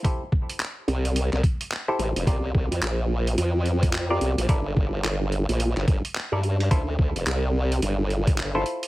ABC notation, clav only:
X:1
M:4/4
L:1/16
Q:"Swing 16ths" 1/4=108
K:Gdor
V:1 name="Clav"
[EGAc] z12 [EGAc]3 | [FGBd] z12 [FGBd]3 | [EABd] z12 [EABd] z2 | [EFAc] z12 [EFAc]3 |]